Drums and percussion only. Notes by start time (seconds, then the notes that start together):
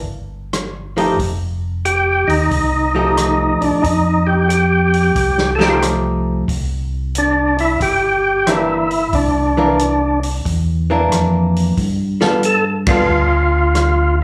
0.53 cross-stick, closed hi-hat
0.97 open hi-hat
1.19 kick, open hi-hat
1.85 closed hi-hat
2.29 open hi-hat
2.51 kick, open hi-hat
3.17 cross-stick, closed hi-hat
3.62 open hi-hat
3.84 kick, open hi-hat
4.50 closed hi-hat
4.94 open hi-hat
5.16 kick, open hi-hat
5.38 snare
5.60 snare
5.82 cross-stick, closed hi-hat
6.48 kick, open hi-hat
7.15 closed hi-hat
7.58 open hi-hat
7.80 kick, open hi-hat
8.47 cross-stick, closed hi-hat
8.91 open hi-hat
9.13 kick, open hi-hat
9.79 closed hi-hat
10.23 open hi-hat
10.45 kick, open hi-hat
11.12 cross-stick, closed hi-hat
11.56 open hi-hat
11.77 kick, open hi-hat
12.21 snare
12.43 closed hi-hat
12.87 kick, ride
13.75 cross-stick, closed hi-hat